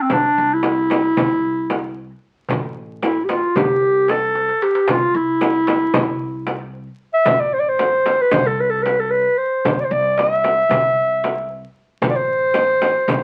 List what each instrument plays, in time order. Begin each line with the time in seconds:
0.02 clarinet C4
0.10 upright bass C2, clarinet D4, frame drum, darbuka dum
0.37 upright bass C2, darbuka ka
0.54 clarinet E4
0.63 darbuka tek, frame drum
0.90 darbuka tek, frame drum
1.17 upright bass C2, darbuka dum, frame drum
1.70 darbuka tek, frame drum
1.96 darbuka ka
2.49 upright bass A1, darbuka dum, frame drum
2.76 darbuka ka
3.02 clarinet E4, darbuka tek, frame drum
3.24 clarinet G4
3.29 clarinet F4, darbuka tek, frame drum
3.55 upright bass C2, clarinet G4, darbuka dum, frame drum
3.82 darbuka ka
4.08 clarinet A4, darbuka tek, frame drum
4.35 darbuka tek
4.49 darbuka ka
4.62 clarinet G4, darbuka tek
4.75 darbuka ka
4.88 upright bass C2, clarinet F4, frame drum, darbuka dum
5.14 upright bass C2, clarinet E4, darbuka ka
5.41 darbuka tek, frame drum
5.67 darbuka tek, frame drum
5.94 upright bass C2, frame drum, darbuka dum
6.47 darbuka tek, frame drum
6.73 darbuka ka
7.14 clarinet E5
7.25 upright bass A1, frame drum, darbuka dum
7.40 clarinet D5
7.53 clarinet C5, darbuka ka
7.59 clarinet D5
7.69 clarinet C5
7.79 darbuka tek, frame drum
8.06 darbuka tek, frame drum
8.21 clarinet B4
8.31 upright bass C2, clarinet C5, frame drum, darbuka dum
8.47 clarinet A4
8.60 clarinet B4
8.70 clarinet A4
8.82 clarinet B4, darbuka tek, frame drum
9.00 clarinet A4
9.11 clarinet B4, darbuka ka
9.38 clarinet C5
9.65 upright bass C2, darbuka dum, frame drum
9.80 clarinet D5
9.84 clarinet C5
9.91 upright bass C2, clarinet D5, darbuka ka
10.18 clarinet D#5, darbuka tek, frame drum
10.33 clarinet E5
10.44 darbuka tek, frame drum
10.69 upright bass C2, frame drum, darbuka dum
11.24 darbuka tek, frame drum
11.50 darbuka ka
12.02 upright bass A1, frame drum, darbuka dum
12.10 clarinet D5
12.16 clarinet C5
12.29 darbuka ka
12.54 darbuka tek, frame drum
12.82 darbuka tek, frame drum
13.08 upright bass C2, darbuka dum, frame drum